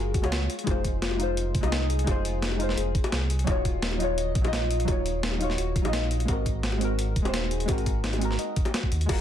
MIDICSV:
0, 0, Header, 1, 5, 480
1, 0, Start_track
1, 0, Tempo, 350877
1, 917, Time_signature, 4, 2, 24, 8
1, 12598, End_track
2, 0, Start_track
2, 0, Title_t, "Synth pluck"
2, 0, Program_c, 0, 84
2, 0, Note_on_c, 0, 68, 81
2, 174, Note_off_c, 0, 68, 0
2, 199, Note_on_c, 0, 66, 78
2, 415, Note_off_c, 0, 66, 0
2, 434, Note_on_c, 0, 65, 78
2, 570, Note_off_c, 0, 65, 0
2, 916, Note_on_c, 0, 68, 78
2, 1133, Note_off_c, 0, 68, 0
2, 1396, Note_on_c, 0, 65, 104
2, 1531, Note_off_c, 0, 65, 0
2, 2361, Note_on_c, 0, 63, 80
2, 2576, Note_off_c, 0, 63, 0
2, 2596, Note_on_c, 0, 68, 75
2, 2813, Note_off_c, 0, 68, 0
2, 2837, Note_on_c, 0, 68, 84
2, 3054, Note_off_c, 0, 68, 0
2, 3078, Note_on_c, 0, 65, 80
2, 3294, Note_off_c, 0, 65, 0
2, 3315, Note_on_c, 0, 63, 80
2, 3450, Note_off_c, 0, 63, 0
2, 3795, Note_on_c, 0, 68, 79
2, 4013, Note_off_c, 0, 68, 0
2, 4276, Note_on_c, 0, 68, 79
2, 4411, Note_off_c, 0, 68, 0
2, 4754, Note_on_c, 0, 66, 81
2, 4972, Note_off_c, 0, 66, 0
2, 4995, Note_on_c, 0, 65, 79
2, 5213, Note_off_c, 0, 65, 0
2, 5235, Note_on_c, 0, 63, 76
2, 5370, Note_off_c, 0, 63, 0
2, 5716, Note_on_c, 0, 75, 85
2, 5851, Note_off_c, 0, 75, 0
2, 6199, Note_on_c, 0, 65, 100
2, 6332, Note_off_c, 0, 65, 0
2, 7157, Note_on_c, 0, 63, 76
2, 7374, Note_off_c, 0, 63, 0
2, 7398, Note_on_c, 0, 66, 79
2, 7614, Note_off_c, 0, 66, 0
2, 7638, Note_on_c, 0, 66, 83
2, 7854, Note_off_c, 0, 66, 0
2, 7878, Note_on_c, 0, 65, 83
2, 8094, Note_off_c, 0, 65, 0
2, 8113, Note_on_c, 0, 63, 80
2, 8249, Note_off_c, 0, 63, 0
2, 8597, Note_on_c, 0, 75, 84
2, 8731, Note_off_c, 0, 75, 0
2, 9077, Note_on_c, 0, 66, 102
2, 9211, Note_off_c, 0, 66, 0
2, 10037, Note_on_c, 0, 63, 81
2, 10254, Note_off_c, 0, 63, 0
2, 10276, Note_on_c, 0, 68, 75
2, 10493, Note_off_c, 0, 68, 0
2, 10514, Note_on_c, 0, 68, 81
2, 10733, Note_off_c, 0, 68, 0
2, 10757, Note_on_c, 0, 66, 79
2, 10974, Note_off_c, 0, 66, 0
2, 10995, Note_on_c, 0, 63, 78
2, 11130, Note_off_c, 0, 63, 0
2, 11477, Note_on_c, 0, 75, 78
2, 11611, Note_off_c, 0, 75, 0
2, 11960, Note_on_c, 0, 66, 76
2, 12187, Note_off_c, 0, 66, 0
2, 12438, Note_on_c, 0, 68, 84
2, 12598, Note_off_c, 0, 68, 0
2, 12598, End_track
3, 0, Start_track
3, 0, Title_t, "Synth stab"
3, 0, Program_c, 1, 62
3, 0, Control_c, 1, 64, 127
3, 0, Note_on_c, 1, 56, 89
3, 0, Note_on_c, 1, 65, 90
3, 0, Note_on_c, 1, 66, 85
3, 0, Note_on_c, 1, 70, 104
3, 0, Note_on_c, 1, 73, 97
3, 271, Note_off_c, 1, 56, 0
3, 286, Note_off_c, 1, 65, 0
3, 295, Note_on_c, 1, 56, 91
3, 302, Note_off_c, 1, 66, 0
3, 311, Note_on_c, 1, 65, 83
3, 317, Note_off_c, 1, 70, 0
3, 326, Note_on_c, 1, 66, 83
3, 341, Note_off_c, 1, 73, 0
3, 341, Note_on_c, 1, 73, 102
3, 650, Note_off_c, 1, 56, 0
3, 657, Note_off_c, 1, 65, 0
3, 665, Note_off_c, 1, 66, 0
3, 672, Note_off_c, 1, 73, 0
3, 691, Control_c, 1, 64, 0
3, 872, Note_on_c, 1, 56, 90
3, 901, Note_on_c, 1, 63, 89
3, 930, Note_on_c, 1, 65, 87
3, 961, Note_on_c, 1, 72, 103
3, 966, Control_c, 1, 64, 127
3, 1573, Note_off_c, 1, 56, 0
3, 1590, Note_on_c, 1, 56, 90
3, 1601, Note_off_c, 1, 63, 0
3, 1616, Note_off_c, 1, 65, 0
3, 1620, Note_on_c, 1, 63, 88
3, 1631, Note_off_c, 1, 72, 0
3, 1650, Note_on_c, 1, 65, 84
3, 1680, Note_on_c, 1, 72, 105
3, 2179, Note_off_c, 1, 56, 0
3, 2196, Note_on_c, 1, 56, 94
3, 2209, Note_off_c, 1, 63, 0
3, 2224, Note_off_c, 1, 65, 0
3, 2224, Note_on_c, 1, 63, 86
3, 2239, Note_off_c, 1, 72, 0
3, 2256, Note_on_c, 1, 65, 81
3, 2284, Note_on_c, 1, 75, 95
3, 2771, Note_off_c, 1, 56, 0
3, 2788, Note_on_c, 1, 56, 95
3, 2800, Note_off_c, 1, 63, 0
3, 2816, Note_off_c, 1, 65, 0
3, 2818, Note_on_c, 1, 63, 83
3, 2830, Note_off_c, 1, 75, 0
3, 2849, Note_on_c, 1, 65, 88
3, 2878, Note_on_c, 1, 72, 104
3, 3493, Note_off_c, 1, 56, 0
3, 3509, Note_on_c, 1, 56, 89
3, 3520, Note_off_c, 1, 63, 0
3, 3535, Note_off_c, 1, 65, 0
3, 3539, Note_on_c, 1, 63, 85
3, 3550, Note_off_c, 1, 72, 0
3, 3570, Note_on_c, 1, 65, 88
3, 3600, Note_on_c, 1, 72, 107
3, 4113, Note_off_c, 1, 56, 0
3, 4128, Note_off_c, 1, 63, 0
3, 4144, Note_off_c, 1, 65, 0
3, 4158, Note_off_c, 1, 72, 0
3, 4707, Note_on_c, 1, 54, 98
3, 4736, Note_on_c, 1, 63, 87
3, 4767, Note_on_c, 1, 65, 87
3, 4776, Control_c, 1, 64, 0
3, 4798, Note_on_c, 1, 73, 104
3, 5051, Control_c, 1, 64, 127
3, 5414, Note_off_c, 1, 54, 0
3, 5431, Note_on_c, 1, 54, 91
3, 5439, Note_off_c, 1, 63, 0
3, 5454, Note_off_c, 1, 65, 0
3, 5460, Note_on_c, 1, 63, 85
3, 5469, Note_off_c, 1, 73, 0
3, 5490, Note_on_c, 1, 65, 88
3, 5519, Note_on_c, 1, 73, 101
3, 6019, Note_off_c, 1, 54, 0
3, 6036, Note_on_c, 1, 54, 92
3, 6048, Note_off_c, 1, 63, 0
3, 6063, Note_off_c, 1, 65, 0
3, 6066, Note_on_c, 1, 63, 82
3, 6078, Note_off_c, 1, 73, 0
3, 6096, Note_on_c, 1, 65, 84
3, 6125, Note_on_c, 1, 75, 101
3, 6614, Note_off_c, 1, 54, 0
3, 6630, Note_on_c, 1, 54, 96
3, 6641, Note_off_c, 1, 63, 0
3, 6656, Note_off_c, 1, 65, 0
3, 6661, Note_on_c, 1, 63, 85
3, 6671, Note_off_c, 1, 75, 0
3, 6690, Note_on_c, 1, 65, 84
3, 6721, Note_on_c, 1, 73, 105
3, 7334, Note_off_c, 1, 54, 0
3, 7350, Note_on_c, 1, 54, 90
3, 7361, Note_off_c, 1, 63, 0
3, 7376, Note_off_c, 1, 65, 0
3, 7381, Note_on_c, 1, 63, 87
3, 7391, Note_off_c, 1, 73, 0
3, 7412, Note_on_c, 1, 65, 86
3, 7440, Note_on_c, 1, 73, 102
3, 7941, Note_off_c, 1, 54, 0
3, 7958, Note_on_c, 1, 54, 87
3, 7969, Note_off_c, 1, 63, 0
3, 7984, Note_off_c, 1, 65, 0
3, 7986, Note_on_c, 1, 63, 85
3, 7998, Note_off_c, 1, 73, 0
3, 8018, Note_on_c, 1, 65, 82
3, 8047, Note_on_c, 1, 75, 101
3, 8547, Note_off_c, 1, 54, 0
3, 8552, Note_on_c, 1, 56, 92
3, 8561, Note_off_c, 1, 63, 0
3, 8577, Note_off_c, 1, 65, 0
3, 8582, Note_on_c, 1, 60, 90
3, 8592, Note_off_c, 1, 75, 0
3, 8612, Note_on_c, 1, 66, 88
3, 8613, Control_c, 1, 64, 0
3, 8643, Note_on_c, 1, 70, 106
3, 8843, Control_c, 1, 64, 127
3, 9254, Note_off_c, 1, 56, 0
3, 9271, Note_on_c, 1, 56, 96
3, 9282, Note_off_c, 1, 60, 0
3, 9297, Note_off_c, 1, 66, 0
3, 9301, Note_on_c, 1, 60, 88
3, 9312, Note_off_c, 1, 70, 0
3, 9332, Note_on_c, 1, 66, 86
3, 9362, Note_on_c, 1, 70, 108
3, 9862, Note_off_c, 1, 56, 0
3, 9878, Note_on_c, 1, 56, 95
3, 9889, Note_off_c, 1, 60, 0
3, 9904, Note_off_c, 1, 66, 0
3, 9908, Note_on_c, 1, 60, 84
3, 9919, Note_off_c, 1, 70, 0
3, 9937, Note_on_c, 1, 66, 87
3, 9968, Note_on_c, 1, 72, 104
3, 10455, Note_off_c, 1, 56, 0
3, 10471, Note_on_c, 1, 56, 95
3, 10482, Note_off_c, 1, 60, 0
3, 10497, Note_off_c, 1, 66, 0
3, 10501, Note_on_c, 1, 60, 83
3, 10512, Note_off_c, 1, 72, 0
3, 10531, Note_on_c, 1, 66, 92
3, 10561, Note_on_c, 1, 70, 100
3, 11175, Note_off_c, 1, 56, 0
3, 11192, Note_on_c, 1, 56, 91
3, 11201, Note_off_c, 1, 60, 0
3, 11216, Note_off_c, 1, 66, 0
3, 11222, Note_on_c, 1, 60, 86
3, 11231, Note_off_c, 1, 70, 0
3, 11251, Note_on_c, 1, 66, 84
3, 11282, Note_on_c, 1, 70, 101
3, 11794, Note_off_c, 1, 56, 0
3, 11810, Note_off_c, 1, 60, 0
3, 11824, Note_off_c, 1, 66, 0
3, 11840, Note_off_c, 1, 70, 0
3, 12391, Note_on_c, 1, 56, 89
3, 12423, Note_on_c, 1, 65, 82
3, 12453, Note_on_c, 1, 66, 89
3, 12456, Control_c, 1, 64, 0
3, 12483, Note_on_c, 1, 70, 106
3, 12598, Note_off_c, 1, 56, 0
3, 12598, Note_off_c, 1, 65, 0
3, 12598, Note_off_c, 1, 66, 0
3, 12598, Note_off_c, 1, 70, 0
3, 12598, End_track
4, 0, Start_track
4, 0, Title_t, "Sub bass"
4, 0, Program_c, 2, 38
4, 0, Note_on_c, 2, 30, 92
4, 302, Note_off_c, 2, 30, 0
4, 321, Note_on_c, 2, 37, 100
4, 658, Note_off_c, 2, 37, 0
4, 917, Note_on_c, 2, 29, 92
4, 2098, Note_off_c, 2, 29, 0
4, 2115, Note_on_c, 2, 36, 103
4, 2818, Note_off_c, 2, 36, 0
4, 2835, Note_on_c, 2, 29, 93
4, 3777, Note_off_c, 2, 29, 0
4, 3793, Note_on_c, 2, 29, 97
4, 4140, Note_off_c, 2, 29, 0
4, 4275, Note_on_c, 2, 36, 84
4, 4738, Note_off_c, 2, 36, 0
4, 4754, Note_on_c, 2, 27, 94
4, 5937, Note_off_c, 2, 27, 0
4, 5955, Note_on_c, 2, 34, 101
4, 6657, Note_off_c, 2, 34, 0
4, 6677, Note_on_c, 2, 27, 101
4, 7618, Note_off_c, 2, 27, 0
4, 7636, Note_on_c, 2, 27, 98
4, 7981, Note_off_c, 2, 27, 0
4, 8002, Note_on_c, 2, 34, 105
4, 8578, Note_off_c, 2, 34, 0
4, 8597, Note_on_c, 2, 32, 95
4, 9778, Note_off_c, 2, 32, 0
4, 9797, Note_on_c, 2, 27, 105
4, 10498, Note_off_c, 2, 27, 0
4, 10516, Note_on_c, 2, 32, 93
4, 11458, Note_off_c, 2, 32, 0
4, 12196, Note_on_c, 2, 39, 90
4, 12413, Note_off_c, 2, 39, 0
4, 12436, Note_on_c, 2, 30, 100
4, 12598, Note_off_c, 2, 30, 0
4, 12598, End_track
5, 0, Start_track
5, 0, Title_t, "Drums"
5, 197, Note_on_c, 9, 36, 111
5, 198, Note_on_c, 9, 42, 68
5, 322, Note_on_c, 9, 60, 98
5, 324, Note_off_c, 9, 42, 0
5, 324, Note_on_c, 9, 42, 40
5, 333, Note_off_c, 9, 36, 0
5, 438, Note_off_c, 9, 42, 0
5, 438, Note_on_c, 9, 38, 126
5, 438, Note_on_c, 9, 42, 100
5, 459, Note_off_c, 9, 60, 0
5, 575, Note_off_c, 9, 38, 0
5, 575, Note_off_c, 9, 42, 0
5, 680, Note_on_c, 9, 42, 70
5, 804, Note_off_c, 9, 42, 0
5, 804, Note_on_c, 9, 42, 39
5, 917, Note_on_c, 9, 36, 123
5, 918, Note_off_c, 9, 42, 0
5, 918, Note_on_c, 9, 42, 98
5, 918, Note_on_c, 9, 60, 91
5, 1053, Note_off_c, 9, 36, 0
5, 1055, Note_off_c, 9, 42, 0
5, 1055, Note_off_c, 9, 60, 0
5, 1156, Note_on_c, 9, 36, 68
5, 1157, Note_on_c, 9, 42, 70
5, 1293, Note_off_c, 9, 36, 0
5, 1294, Note_off_c, 9, 42, 0
5, 1398, Note_on_c, 9, 38, 127
5, 1398, Note_on_c, 9, 42, 98
5, 1520, Note_on_c, 9, 60, 62
5, 1534, Note_off_c, 9, 38, 0
5, 1534, Note_off_c, 9, 42, 0
5, 1637, Note_on_c, 9, 42, 69
5, 1657, Note_off_c, 9, 60, 0
5, 1774, Note_off_c, 9, 42, 0
5, 1878, Note_on_c, 9, 42, 91
5, 2015, Note_off_c, 9, 42, 0
5, 2116, Note_on_c, 9, 36, 113
5, 2118, Note_on_c, 9, 42, 66
5, 2231, Note_on_c, 9, 60, 107
5, 2242, Note_off_c, 9, 42, 0
5, 2242, Note_on_c, 9, 42, 39
5, 2252, Note_off_c, 9, 36, 0
5, 2356, Note_off_c, 9, 42, 0
5, 2356, Note_on_c, 9, 38, 123
5, 2356, Note_on_c, 9, 42, 96
5, 2367, Note_off_c, 9, 60, 0
5, 2493, Note_off_c, 9, 38, 0
5, 2493, Note_off_c, 9, 42, 0
5, 2598, Note_on_c, 9, 42, 71
5, 2723, Note_off_c, 9, 42, 0
5, 2723, Note_on_c, 9, 42, 38
5, 2835, Note_on_c, 9, 36, 121
5, 2837, Note_off_c, 9, 42, 0
5, 2837, Note_on_c, 9, 42, 93
5, 2837, Note_on_c, 9, 60, 88
5, 2972, Note_off_c, 9, 36, 0
5, 2974, Note_off_c, 9, 42, 0
5, 2974, Note_off_c, 9, 60, 0
5, 3078, Note_on_c, 9, 42, 67
5, 3215, Note_off_c, 9, 42, 0
5, 3317, Note_on_c, 9, 38, 122
5, 3317, Note_on_c, 9, 42, 87
5, 3445, Note_on_c, 9, 60, 65
5, 3454, Note_off_c, 9, 38, 0
5, 3454, Note_off_c, 9, 42, 0
5, 3555, Note_on_c, 9, 42, 66
5, 3582, Note_off_c, 9, 60, 0
5, 3681, Note_on_c, 9, 38, 38
5, 3692, Note_off_c, 9, 42, 0
5, 3796, Note_on_c, 9, 42, 91
5, 3818, Note_off_c, 9, 38, 0
5, 3933, Note_off_c, 9, 42, 0
5, 4035, Note_on_c, 9, 36, 115
5, 4035, Note_on_c, 9, 42, 65
5, 4160, Note_off_c, 9, 42, 0
5, 4160, Note_on_c, 9, 42, 37
5, 4160, Note_on_c, 9, 60, 107
5, 4171, Note_off_c, 9, 36, 0
5, 4273, Note_off_c, 9, 42, 0
5, 4273, Note_on_c, 9, 38, 121
5, 4273, Note_on_c, 9, 42, 93
5, 4297, Note_off_c, 9, 60, 0
5, 4410, Note_off_c, 9, 38, 0
5, 4410, Note_off_c, 9, 42, 0
5, 4514, Note_on_c, 9, 42, 63
5, 4639, Note_off_c, 9, 42, 0
5, 4639, Note_on_c, 9, 42, 36
5, 4749, Note_on_c, 9, 60, 99
5, 4752, Note_off_c, 9, 42, 0
5, 4752, Note_on_c, 9, 42, 92
5, 4755, Note_on_c, 9, 36, 117
5, 4886, Note_off_c, 9, 60, 0
5, 4889, Note_off_c, 9, 42, 0
5, 4892, Note_off_c, 9, 36, 0
5, 4994, Note_on_c, 9, 42, 63
5, 4995, Note_on_c, 9, 36, 60
5, 5131, Note_off_c, 9, 42, 0
5, 5132, Note_off_c, 9, 36, 0
5, 5233, Note_on_c, 9, 38, 121
5, 5233, Note_on_c, 9, 42, 89
5, 5357, Note_on_c, 9, 60, 59
5, 5370, Note_off_c, 9, 38, 0
5, 5370, Note_off_c, 9, 42, 0
5, 5474, Note_on_c, 9, 42, 61
5, 5494, Note_off_c, 9, 60, 0
5, 5611, Note_off_c, 9, 42, 0
5, 5716, Note_on_c, 9, 42, 90
5, 5853, Note_off_c, 9, 42, 0
5, 5955, Note_on_c, 9, 42, 64
5, 5956, Note_on_c, 9, 36, 109
5, 6081, Note_off_c, 9, 42, 0
5, 6081, Note_on_c, 9, 42, 36
5, 6081, Note_on_c, 9, 60, 97
5, 6093, Note_off_c, 9, 36, 0
5, 6197, Note_off_c, 9, 42, 0
5, 6197, Note_on_c, 9, 38, 116
5, 6197, Note_on_c, 9, 42, 85
5, 6218, Note_off_c, 9, 60, 0
5, 6334, Note_off_c, 9, 38, 0
5, 6334, Note_off_c, 9, 42, 0
5, 6437, Note_on_c, 9, 42, 64
5, 6564, Note_off_c, 9, 42, 0
5, 6564, Note_on_c, 9, 42, 37
5, 6672, Note_on_c, 9, 60, 83
5, 6677, Note_on_c, 9, 36, 112
5, 6678, Note_off_c, 9, 42, 0
5, 6678, Note_on_c, 9, 42, 91
5, 6809, Note_off_c, 9, 60, 0
5, 6814, Note_off_c, 9, 36, 0
5, 6815, Note_off_c, 9, 42, 0
5, 6918, Note_on_c, 9, 42, 62
5, 7054, Note_off_c, 9, 42, 0
5, 7158, Note_on_c, 9, 38, 118
5, 7158, Note_on_c, 9, 42, 85
5, 7272, Note_on_c, 9, 60, 64
5, 7295, Note_off_c, 9, 38, 0
5, 7295, Note_off_c, 9, 42, 0
5, 7396, Note_on_c, 9, 42, 62
5, 7409, Note_off_c, 9, 60, 0
5, 7521, Note_on_c, 9, 38, 36
5, 7533, Note_off_c, 9, 42, 0
5, 7636, Note_on_c, 9, 42, 88
5, 7658, Note_off_c, 9, 38, 0
5, 7773, Note_off_c, 9, 42, 0
5, 7877, Note_on_c, 9, 36, 105
5, 7879, Note_on_c, 9, 42, 62
5, 8003, Note_off_c, 9, 42, 0
5, 8003, Note_on_c, 9, 42, 35
5, 8003, Note_on_c, 9, 60, 100
5, 8014, Note_off_c, 9, 36, 0
5, 8115, Note_off_c, 9, 42, 0
5, 8115, Note_on_c, 9, 38, 118
5, 8115, Note_on_c, 9, 42, 92
5, 8139, Note_off_c, 9, 60, 0
5, 8252, Note_off_c, 9, 38, 0
5, 8252, Note_off_c, 9, 42, 0
5, 8357, Note_on_c, 9, 42, 62
5, 8483, Note_off_c, 9, 42, 0
5, 8483, Note_on_c, 9, 42, 35
5, 8596, Note_on_c, 9, 36, 113
5, 8597, Note_off_c, 9, 42, 0
5, 8597, Note_on_c, 9, 42, 93
5, 8598, Note_on_c, 9, 60, 85
5, 8733, Note_off_c, 9, 36, 0
5, 8734, Note_off_c, 9, 42, 0
5, 8735, Note_off_c, 9, 60, 0
5, 8836, Note_on_c, 9, 36, 64
5, 8836, Note_on_c, 9, 42, 65
5, 8973, Note_off_c, 9, 36, 0
5, 8973, Note_off_c, 9, 42, 0
5, 9075, Note_on_c, 9, 38, 111
5, 9075, Note_on_c, 9, 42, 90
5, 9196, Note_on_c, 9, 60, 61
5, 9212, Note_off_c, 9, 38, 0
5, 9212, Note_off_c, 9, 42, 0
5, 9317, Note_on_c, 9, 42, 68
5, 9332, Note_off_c, 9, 60, 0
5, 9454, Note_off_c, 9, 42, 0
5, 9558, Note_on_c, 9, 42, 93
5, 9695, Note_off_c, 9, 42, 0
5, 9797, Note_on_c, 9, 36, 103
5, 9797, Note_on_c, 9, 42, 66
5, 9922, Note_on_c, 9, 60, 97
5, 9923, Note_off_c, 9, 42, 0
5, 9923, Note_on_c, 9, 42, 37
5, 9933, Note_off_c, 9, 36, 0
5, 10036, Note_off_c, 9, 42, 0
5, 10036, Note_on_c, 9, 38, 118
5, 10036, Note_on_c, 9, 42, 96
5, 10059, Note_off_c, 9, 60, 0
5, 10173, Note_off_c, 9, 38, 0
5, 10173, Note_off_c, 9, 42, 0
5, 10275, Note_on_c, 9, 42, 66
5, 10400, Note_off_c, 9, 42, 0
5, 10400, Note_on_c, 9, 42, 38
5, 10505, Note_on_c, 9, 60, 82
5, 10515, Note_off_c, 9, 42, 0
5, 10515, Note_on_c, 9, 42, 95
5, 10517, Note_on_c, 9, 36, 116
5, 10642, Note_off_c, 9, 60, 0
5, 10643, Note_off_c, 9, 42, 0
5, 10643, Note_on_c, 9, 42, 36
5, 10654, Note_off_c, 9, 36, 0
5, 10757, Note_off_c, 9, 42, 0
5, 10757, Note_on_c, 9, 36, 63
5, 10757, Note_on_c, 9, 42, 70
5, 10894, Note_off_c, 9, 36, 0
5, 10894, Note_off_c, 9, 42, 0
5, 10997, Note_on_c, 9, 38, 112
5, 10997, Note_on_c, 9, 42, 92
5, 11123, Note_off_c, 9, 42, 0
5, 11123, Note_on_c, 9, 42, 37
5, 11127, Note_on_c, 9, 60, 67
5, 11134, Note_off_c, 9, 38, 0
5, 11238, Note_off_c, 9, 42, 0
5, 11238, Note_on_c, 9, 42, 70
5, 11264, Note_off_c, 9, 60, 0
5, 11363, Note_on_c, 9, 38, 35
5, 11375, Note_off_c, 9, 42, 0
5, 11476, Note_on_c, 9, 42, 91
5, 11500, Note_off_c, 9, 38, 0
5, 11612, Note_off_c, 9, 42, 0
5, 11716, Note_on_c, 9, 42, 64
5, 11718, Note_on_c, 9, 36, 106
5, 11837, Note_on_c, 9, 60, 91
5, 11842, Note_off_c, 9, 42, 0
5, 11842, Note_on_c, 9, 42, 37
5, 11855, Note_off_c, 9, 36, 0
5, 11958, Note_off_c, 9, 42, 0
5, 11958, Note_on_c, 9, 38, 116
5, 11958, Note_on_c, 9, 42, 94
5, 11974, Note_off_c, 9, 60, 0
5, 12083, Note_on_c, 9, 36, 57
5, 12095, Note_off_c, 9, 38, 0
5, 12095, Note_off_c, 9, 42, 0
5, 12199, Note_on_c, 9, 42, 66
5, 12220, Note_off_c, 9, 36, 0
5, 12326, Note_off_c, 9, 42, 0
5, 12326, Note_on_c, 9, 42, 37
5, 12437, Note_on_c, 9, 36, 123
5, 12437, Note_on_c, 9, 60, 94
5, 12438, Note_off_c, 9, 42, 0
5, 12438, Note_on_c, 9, 42, 104
5, 12438, Note_on_c, 9, 49, 106
5, 12574, Note_off_c, 9, 36, 0
5, 12574, Note_off_c, 9, 60, 0
5, 12575, Note_off_c, 9, 42, 0
5, 12575, Note_off_c, 9, 49, 0
5, 12598, End_track
0, 0, End_of_file